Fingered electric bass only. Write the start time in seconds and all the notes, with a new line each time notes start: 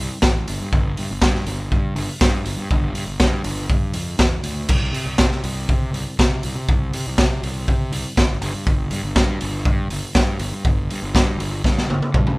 0.22 A1
0.48 G1
0.61 G2
0.72 G1
0.98 G2
1.11 G1
1.22 G2
1.47 G1
1.72 G2
1.95 G1
2.21 G2
2.45 G1
2.56 G2
2.71 G1
2.94 G2
3.06 G1
3.20 G2
3.44 G1
3.70 G2
3.94 F2
4.19 E2
4.43 D2
4.69 C2
4.93 C3
5.06 C2
5.19 C3
5.44 C2
5.69 C3
5.93 C2
6.19 C3
6.44 C2
6.55 C3
6.68 C2
6.94 C3
7.07 C2
7.18 C3
7.43 C2
7.68 C3
7.92 C2
8.18 G#1
8.41 G1
8.54 G2
8.66 G1
8.91 G2
9.03 G1
9.16 G2
9.42 G1
9.66 G2
9.91 G1
10.15 G2
10.40 G1
10.52 G2
10.65 G1
10.91 G2
11.02 G1
11.14 G2
11.38 G1
11.64 G2
11.88 G1
12.15 G2